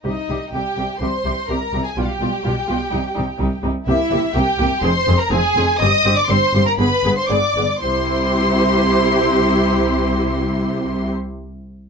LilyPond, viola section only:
\new Staff \with { instrumentName = "Viola section" } { \time 4/4 \key g \phrygian \tempo 4 = 123 <g g'>8 <g g'>8 <g g'>8 <g g'>8 <g g'>8 <g g'>8 <g g'>8 <g g'>8 | <g f'>8 <g f'>8 <g f'>8 <g f'>8 <g ees'>8 <g ees'>8 <g ees'>8 <g ees'>8 | <bes g'>8 <bes g'>8 <bes g'>8 <bes g'>8 <c' aes'>8 <c' aes'>8 <c' aes'>8 <c' aes'>8 | <c' g'>8 <c' g'>8 <c' g'>8 <c' g'>8 <b aes'>8 <b aes'>8 <b aes'>8 <b aes'>8 |
<e' g'>1~ | <e' g'>1 | }